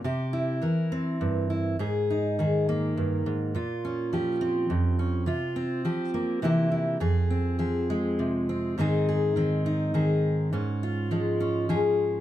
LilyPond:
\new Staff \with { instrumentName = "Steel-string acoustic guitar" } { \time 3/4 \key aes \major \tempo 4 = 104 << { g'8 e'8 bes'8 c'4 e'8 | aes'8 ees'8 aes'8 bes4. | f'8 des'8 g'8 c'4 des'8 | f'8 c'8 g'8 bes8 <e bes e' g'>8 e'8 |
aes'8 c'8 aes'8 aes4 c'8 | <ees c' ees' aes'>8 aes'8 c'8 ees'8 aes'4 | des'8 f'8 aes8 des'8 aes'4 | } \\ { c4 e4 g,4 | aes,4 ees4 g,8 aes,8 | bes,4 f4 f,4 | c4 f4 c4 |
f,4 f4 c4 | aes,4 ees4 ees4 | aes,4 f4 f4 | } >> }